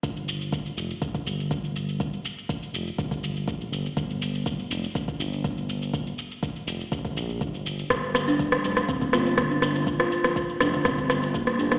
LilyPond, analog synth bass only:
\new Staff \with { instrumentName = "Analog synth bass" } { \clef bass \time 4/4 \key g \minor \tempo 4 = 122 g,,4. f,,8 d,,8 g,,4.~ | g,,8 r4 f,,8 g,,4 bes,,8 g,,8 | g,,4. f,,8 d,,8 g,,4.~ | g,,8 r4 f,,8 g,,8 bes,,8 g,,4 |
g,,4. f,,8 d,,8 g,,4.~ | g,,8 r4 f,,8 g,,4 bes,,8 g,,8 | }